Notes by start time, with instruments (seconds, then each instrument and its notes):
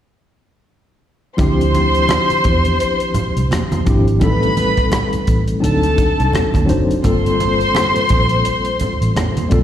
1.37 fingered electric bass D2, tine electric piano F3 C4 D4 E4 G4, violin section C5 C6, kick, closed hi-hat, muted conga
1.61 closed hi-hat
1.75 closed hi-hat, muted conga
1.95 closed hi-hat
2.09 cross-stick, closed hi-hat, high conga
2.30 muted fingered electric bass stroke, closed hi-hat
2.44 fingered electric bass E2, kick, closed hi-hat
2.65 closed hi-hat
2.80 closed hi-hat
3.00 closed hi-hat
3.14 muted fingered electric bass stroke, closed hi-hat, muted conga, low conga
3.36 fingered electric bass C2, closed hi-hat
3.51 cross-stick, closed hi-hat, high conga
3.72 closed hi-hat, high conga
3.85 fingered electric bass G#1, tine electric piano F3 C4 D4 E4 G4, kick, closed hi-hat
4.08 closed hi-hat
4.19 fingered electric bass A1, tine electric piano G3 A3 C4 D#4, violin section B4 B5, kick, closed hi-hat, muted conga
4.23 tine electric piano A4
4.43 closed hi-hat
4.57 closed hi-hat, muted conga
4.77 kick, closed hi-hat
4.92 cross-stick, closed hi-hat, high conga
5.13 muted fingered electric bass stroke, closed hi-hat
5.27 fingered electric bass A1, kick, closed hi-hat
5.48 closed hi-hat
5.60 fingered electric bass D2, tine electric piano F#3 C4 D4 D#4 A4, violin section A4 A5, closed hi-hat
5.83 closed hi-hat
5.98 kick, closed hi-hat, muted conga
6.20 fingered electric bass C2, closed hi-hat
6.33 cross-stick, closed hi-hat, high conga
6.54 fingered electric bass D2, kick, closed hi-hat, high conga
6.66 fingered electric bass F#1, tine electric piano F#3 C4 D4 D#4 C5, closed hi-hat
6.91 closed hi-hat
7.03 fingered electric bass G1, tine electric piano G3 A#3 C4 F4 A4, violin section C5 C6, kick, closed hi-hat, muted conga
7.26 closed hi-hat
7.40 closed hi-hat, muted conga
7.61 closed hi-hat
7.75 cross-stick, closed hi-hat, high conga
7.96 muted fingered electric bass stroke, closed hi-hat
8.09 fingered electric bass A#1, kick, closed hi-hat
8.29 closed hi-hat
8.45 closed hi-hat
8.65 closed hi-hat
8.80 muted fingered electric bass stroke, closed hi-hat, muted conga, low conga
9.01 fingered electric bass A1, closed hi-hat
9.16 cross-stick, closed hi-hat, high conga
9.37 closed hi-hat, high conga
9.49 fingered electric bass B1, tine electric piano G3 A#3 C4 F4 A4, kick, closed hi-hat